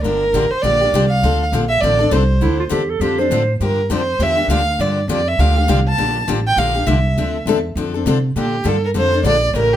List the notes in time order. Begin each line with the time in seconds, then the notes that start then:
0.03 G1 D3 F3 A#3 D4 G4 A#4
0.33 A1 D3 F3 A#3 D4 G4
0.51 C5, muted upright bass stroke
0.62 A#1 D3 F3 A#3 D4 G4 D5
0.81 A#3 D4 G4
0.93 C2 D3 F3 A#3 D4 G4
1.08 F5
1.23 D2 D3 F3 C4 D4 A4
1.52 A#1 D3 F3 C4 D4 A4
1.69 E5
1.81 A1 D3 F3 C4 D4 A4 D5
1.99 C4 D4 A4
2.11 C2 D3 F3 C4 D4 A4 C5
2.41 D2 D3 F3 C4 D4 E4 A4
2.60 F4
2.69 E2 D3 F3 C4 D4 G4 A4
2.90 A4
3.00 F2 D3 F3 C4 D4 G4 A4
3.18 C4 D4 A4 C5
3.30 A2 D3 F3 C4 D4 A4
3.60 G2 D3 F3 A#3 D4 G4 A#4
3.90 F2 D3 F3 A#3 D4 G4 C5
4.19 E2 D3 F3 A#3 D4 G4 E5
4.37 A#3 D4 G4
4.48 D2 D3 F3 A#3 D4 G4 F5
4.79 G2 D3 F3 A#3 D4 G4 D5
5.08 F2 D3 F3 A#3 D4 G4 D5
5.28 E5
5.39 D2 D3 F3 A#3 D4 G4 F5
5.56 A#3 D4 G4
5.68 C2 D3 F3 A#3 D4 G4
5.88 A5
5.98 A#1 D3 F3 A#3 D4 G4
6.27 A1 D3 F3 A#3 D4 G4
6.47 G5
6.56 A#1 D3 F3 A#3 D4 G4 F5
6.75 A#3 D4 G4
6.87 C2 D3 F3 A#3 D4 G4 E5
7.16 D2 D3 F3 C4 D4 A4
7.45 E2 D3 F3 C4 D4 A4
7.75 F2 D3 F3 C4 D4 A4
7.94 C4 D4 A4
8.06 C3 D3 F3 C4 D4 A4
8.36 A#2 D3 F3 A#3 D4 G4 A4
8.64 G2 D3 F3 A#3 D4 A4
8.68 A4
8.85 A#4
8.94 F2 D3 F3 A#3 D4 A4 C5
9.12 A#3 D4 A4
9.23 A#1 D3 F3 A#3 D4 A4 D5
9.54 A1 C#3 E3 A3 C#4 G4 A#4
9.73 G4